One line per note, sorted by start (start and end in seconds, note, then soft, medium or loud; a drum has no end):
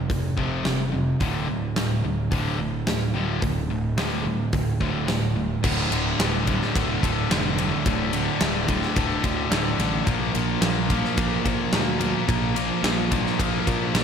0.10 0.34 F1 medium
0.10 0.35 F2 medium
0.10 0.35 C3 medium
0.10 kick loud
0.10 open hi-hat medium
0.37 0.62 F1 medium
0.37 0.63 F2 medium
0.37 0.63 C3 medium
0.37 0.64 F3 loud
0.37 kick medium
0.64 1.14 F1 medium
0.64 0.90 F2 medium
0.64 0.90 C3 medium
0.64 snare loud
0.64 open hi-hat soft
0.92 1.17 F2 medium
0.92 1.17 C3 medium
1.20 1.45 D1 medium
1.20 1.46 D2 medium
1.20 1.47 A2 medium
1.20 1.47 D3 medium
1.20 kick medium
1.20 open hi-hat soft
1.48 1.73 D1 medium
1.48 1.73 D2 medium
1.48 1.74 A2 medium
1.76 2.00 D1 medium
1.76 2.01 D2 medium
1.76 2.02 A2 medium
1.76 snare loud
1.76 open hi-hat medium
2.04 2.28 D1 medium
2.04 2.29 D2 medium
2.04 2.29 A2 medium
2.31 2.56 D1 medium
2.31 2.57 D2 medium
2.31 2.58 A2 medium
2.31 2.58 D3 loud
2.31 kick loud
2.31 open hi-hat soft
2.59 2.83 D1 medium
2.59 2.84 D2 medium
2.59 2.85 A2 medium
2.87 3.11 D1 medium
2.87 3.12 D2 medium
2.87 3.12 A2 medium
2.87 snare loud
2.87 open hi-hat medium
3.14 3.39 D1 medium
3.14 3.40 D2 medium
3.14 3.41 A2 medium
3.14 3.41 D3 loud
3.42 3.67 D1 medium
3.42 3.67 D2 medium
3.42 3.67 A2 medium
3.42 kick loud
3.42 open hi-hat soft
3.69 3.94 D1 medium
3.69 3.95 D2 medium
3.69 3.95 A2 medium
3.97 4.22 D1 medium
3.97 4.24 D2 loud
3.97 4.24 A2 medium
3.97 4.25 D3 medium
3.97 snare loud
3.97 open hi-hat medium
4.25 4.49 D1 medium
4.25 4.50 D2 medium
4.25 4.51 A2 medium
4.53 4.78 D1 medium
4.53 4.78 D2 medium
4.53 4.79 A2 medium
4.53 kick loud
4.53 open hi-hat medium
4.80 5.05 D1 medium
4.80 5.07 D2 medium
4.80 5.07 A2 medium
4.80 5.08 D3 medium
4.80 kick medium
5.07 5.57 D1 medium
5.07 5.34 D2 medium
5.07 5.34 A2 medium
5.07 snare loud
5.07 open hi-hat medium
5.36 5.61 D2 medium
5.36 5.61 A2 medium
5.63 5.85 D1 medium
5.63 5.90 D2 medium
5.63 5.90 A2 medium
5.63 5.92 D3 medium
5.63 kick loud
5.63 crash loud
5.91 6.12 D1 medium
5.91 6.19 D2 medium
5.91 6.19 A2 medium
5.91 6.20 D3 medium
5.91 ride medium
6.19 6.61 D1 medium
6.19 6.47 D2 medium
6.19 6.47 A2 medium
6.19 6.48 D3 loud
6.19 snare loud
6.19 ride loud
6.47 6.73 D2 loud
6.47 6.74 A2 loud
6.47 6.75 D3 loud
6.47 kick medium
6.47 ride medium
6.62 snare soft
6.74 6.96 D1 medium
6.74 7.01 D2 medium
6.74 7.02 A2 medium
6.74 7.03 D3 medium
6.74 kick loud
6.74 ride medium
7.03 7.23 D1 medium
7.03 7.29 D2 medium
7.03 7.30 A2 medium
7.03 7.31 D3 loud
7.03 kick medium
7.03 ride medium
7.30 7.72 F1 medium
7.30 7.57 D2 medium
7.30 7.57 A2 loud
7.30 7.58 D3 loud
7.30 snare loud
7.30 ride loud
7.58 7.84 D2 medium
7.58 7.86 A2 medium
7.58 7.86 D3 medium
7.58 ride medium
7.85 8.27 D1 medium
7.85 8.12 D2 medium
7.85 8.13 A2 medium
7.85 8.13 D3 medium
7.85 kick loud
7.85 ride loud
8.13 8.40 D2 medium
8.13 8.40 A2 medium
8.13 8.41 D3 medium
8.13 ride medium
8.41 8.83 D1 medium
8.41 8.66 D2 loud
8.41 8.67 A2 medium
8.41 8.68 D3 loud
8.41 snare loud
8.41 ride loud
8.67 8.95 D2 medium
8.67 8.95 A2 medium
8.67 8.96 D3 loud
8.67 kick medium
8.67 ride medium
8.82 snare soft
8.96 9.17 D1 medium
8.96 9.22 D2 medium
8.96 9.23 A2 medium
8.96 9.23 D3 medium
8.96 kick loud
8.96 ride loud
9.23 9.49 D2 medium
9.23 9.44 D2 medium
9.23 9.50 A2 medium
9.23 9.50 D3 loud
9.23 kick medium
9.23 ride medium
9.50 9.73 D1 loud
9.50 9.77 D2 loud
9.50 9.78 A2 loud
9.50 9.78 D3 loud
9.50 snare loud
9.50 ride loud
9.78 10.00 A1 medium
9.78 10.04 D2 medium
9.78 10.05 A2 medium
9.78 10.05 D3 loud
9.78 snare soft
9.78 ride medium
10.05 10.28 A#1 medium
10.05 10.33 A#2 medium
10.05 10.34 F3 loud
10.05 10.34 A#3 medium
10.05 kick loud
10.05 ride loud
10.34 10.55 A#1 medium
10.34 10.61 A#2 medium
10.34 10.62 F3 medium
10.34 10.62 A#3 medium
10.34 ride medium
10.61 11.03 A#1 medium
10.61 10.89 A#2 medium
10.61 10.89 F3 medium
10.61 10.90 A#3 loud
10.61 snare loud
10.61 ride loud
10.89 11.16 A#2 medium
10.89 11.17 F3 loud
10.89 11.18 A#3 loud
10.89 kick medium
10.89 ride medium
11.04 snare soft
11.17 11.38 A#1 medium
11.17 11.43 A#2 medium
11.17 11.44 F3 medium
11.17 11.45 A#3 loud
11.17 kick loud
11.17 ride loud
11.44 11.66 A#1 medium
11.44 11.72 A#2 medium
11.44 11.72 F3 medium
11.44 11.73 A#3 medium
11.44 kick medium
11.44 ride medium
11.73 12.14 D2 medium
11.73 11.99 A#2 loud
11.73 12.00 F3 medium
11.73 12.01 A#3 loud
11.73 snare loud
11.73 ride loud
12.00 12.26 A#2 medium
12.00 12.27 F3 medium
12.00 12.29 A#3 medium
12.00 ride medium
12.28 12.70 A#1 medium
12.28 12.54 A#2 medium
12.28 12.55 F3 medium
12.28 12.56 A#3 medium
12.28 kick loud
12.28 ride loud
12.55 12.82 A#2 medium
12.55 12.82 F3 medium
12.55 12.84 A#3 medium
12.55 ride medium
12.83 13.25 A#1 medium
12.83 13.10 A#2 medium
12.83 13.10 F3 medium
12.83 13.12 A#3 medium
12.83 snare loud
12.83 ride loud
13.11 13.37 A#2 medium
13.11 13.37 F3 loud
13.11 13.39 A#3 loud
13.11 kick medium
13.11 ride medium
13.26 snare soft
13.38 13.60 A#1 medium
13.38 13.65 A#2 medium
13.38 13.66 F3 medium
13.38 13.67 A#3 medium
13.38 kick loud
13.38 ride loud
13.66 13.93 A#2 medium
13.66 13.88 A#2 medium
13.66 13.94 F3 medium
13.66 13.96 A#3 medium
13.66 kick medium
13.66 ride medium
13.94 14.04 A#1 medium
13.94 14.04 A#2 medium
13.94 14.04 F3 medium
13.94 14.04 A#3 loud
13.94 snare loud
13.94 ride loud